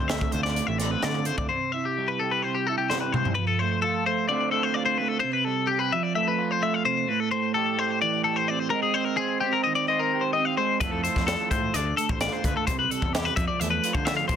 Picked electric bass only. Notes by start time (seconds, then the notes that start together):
0.00 D2
0.33 D2
0.68 A1
1.03 D3
1.38 D2
10.81 F2
11.16 F2
11.51 A2
11.74 D2
12.09 A1
12.44 D2
12.68 C2
13.02 E2
13.37 F2
13.61 E2
13.95 D3
14.29 B1